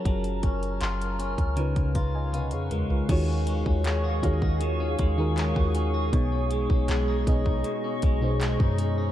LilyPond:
<<
  \new Staff \with { instrumentName = "Ambient pad" } { \time 4/4 \key dis \minor \tempo 4 = 79 << { <ais' ais'' eis'''>2 <b' eis'' cis'''>2 | <eis'' gis'' cis'''>1 | <dis'' cis'''>1 | } \\ { r1 | gis'1~ | gis'1 | } >> }
  \new Staff \with { instrumentName = "Harp" } { \time 4/4 \key dis \minor r1 | r4 gis'16 cis''16 <ais' dis''>4 r4. | r4 gis'4 r2 | }
  \new Staff \with { instrumentName = "FM electric piano" } { \time 4/4 \key dis \minor << { r2 r8 <eis'' ais''>16 <dis'' gis''>16 <b' eis''>16 <gis' cis''>16 <eis' ais'>16 <eis' b'>16~ | <eis' b'>16 r2. r8. | r1 | } \\ { <fis cis' eis' gis' ais'>4~ <fis cis' eis' gis' ais'>16 r8. <cis cis' dis' eis' b'>4~ <cis cis' dis' eis' b'>16 r8. | <dis dis' eis' fis' gis' cis''>4~ <dis dis' eis' fis' gis' cis''>16 r16 <dis dis' eis' fis' gis' cis''>4 r16 <dis dis' eis' fis' gis' ais'>4 r16 | <b, b dis' gis' cis''>4~ <b, b dis' gis' cis''>16 r16 <b, b dis' gis' dis''>4 r16 <b, b dis' gis' bis' cis''>4 r16 | } >> }
  \new Staff \with { instrumentName = "Clean electric guitar" } { \time 4/4 \key dis \minor fis8 cis'8 eis'8 cis'8 cis8 eis'8 b8 gis8 | dis16 cis'16 gis16 cis'16 gis16 fis'16 cis'16 fis'16 dis16 cis'16 gis16 cis'16 gis16 fis'16 cis'16 fis'16 | b,16 cis'16 gis16 cis'16 gis16 dis'16 cis'16 dis'16 b,16 cis'16 gis16 cis'16 gis16 dis'16 cis'16 dis'16 | }
  \new Staff \with { instrumentName = "808-style bass" } { \clef bass \time 4/4 \key dis \minor fis,,8 fis,,8 fis,,8. cis,8 cis,4 eis,16. cis,16. | dis,8. dis,8. dis,4 dis,8. dis,8. | b,,8. b,,16 b,,8 b,,8 r8 b,,8. fis,8. | }
  \new DrumStaff \with { instrumentName = "Drums" } \drummode { \time 4/4 <hh bd>16 hh16 <hh bd>16 hh16 <hc hh>16 hh16 hh16 <hh bd>16 hh16 <hh bd>16 <hh bd>8 <hh tommh>16 hh16 <hh toml>16 tomfh16 | <cymc hh bd>8 hh16 bd16 <hc hh>8 <hh bd>16 bd16 hh8 <hh bd>8 <hc hh>16 bd16 hh8 | <hh bd>8 hh16 bd16 <hc hh>8 <hh bd>16 bd16 hh8 <hh bd>8 <hc hh>16 bd16 hh8 | }
>>